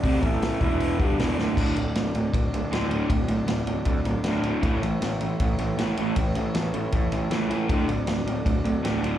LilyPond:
<<
  \new Staff \with { instrumentName = "Transistor combo organ" } { \time 4/4 \key d \mixolydian \tempo 4 = 157 <fis' a' d''>8 <e' a' e''>4 <e' b' e''>4 <fis' a' d''>4. | \key d \major <fis' a' d''>1~ | <fis' a' d''>1 | <e' a' cis''>1~ |
<e' a' cis''>1 | <fis' a' d''>1 | }
  \new Staff \with { instrumentName = "Overdriven electric guitar" } { \clef bass \time 4/4 \key d \mixolydian <c g c'>8 <a, e a>4 <e, b, e>4 <g, d g>8 <e, b, e>8 <d, a, d>8 | \key d \major <d, a, d>8 <d, a,>8 <d, a,>8 <d, a,>8 <d, a,>8 <d, a,>8 <d, a, d>8 <d, a, d>8 | <d, a,>8 <d, a,>8 <d, a,>8 <d, a,>8 <d, a,>8 <d, a,>8 <d, a, d>8 <d, a, d>8 | <a, e a>8 <a, e>8 <a, e>8 <a, e>8 <a, e>8 <a, e>8 <a, e a>8 <a, e a>8 |
<a, e>8 <a, e>8 <a, e>8 <a, e>8 <a, e>8 <a, e>8 <a, e a>8 <a, e a>8 | <d, a, d>8 <d, a,>8 <d, a,>8 <d, a,>8 <d, a,>8 <d, a,>8 <d, a, d>8 <d, a, d>8 | }
  \new Staff \with { instrumentName = "Picked electric bass" } { \clef bass \time 4/4 \key d \mixolydian c,8 a,,4 e,,4 g,,8 e,,8 d,,8 | \key d \major d,,8 d,,8 d,,8 d,,8 d,,8 d,,8 d,,8 d,,8 | d,,8 d,,8 d,,8 d,,8 d,8 d,,8 d,,4 | a,,8 a,,8 a,,8 a,,8 a,,8 a,,8 a,,8 a,,8 |
a,,8 a,,8 a,,8 a,,8 a,8 a,,8 cis,4 | d,,8 d,,8 d,,8 d,,8 d,,8 d,,8 d,,8 d,,8 | }
  \new DrumStaff \with { instrumentName = "Drums" } \drummode { \time 4/4 <hho bd>8 <hho bd>8 <hho sn>8 <hho bd>8 hho8 <hho bd>8 <hho sn>8 sn8 | <cymc bd>8 cymr8 <cymr sn>8 cymr8 <bd cymr>8 cymr8 <cymr sn>8 cymr8 | <bd cymr>8 cymr8 <cymr sn>8 cymr8 <bd cymr>8 cymr8 <cymr sn>8 cymr8 | <bd cymr>8 cymr8 <cymr sn>8 cymr8 <bd cymr>8 cymr8 <cymr sn>8 cymr8 |
<bd cymr>8 cymr8 <cymr sn>8 cymr8 <bd cymr>8 cymr8 <cymr sn>8 cymr8 | <bd cymr>8 cymr8 <cymr sn>8 cymr8 <bd cymr>8 cymr8 <cymr sn>8 cymr8 | }
>>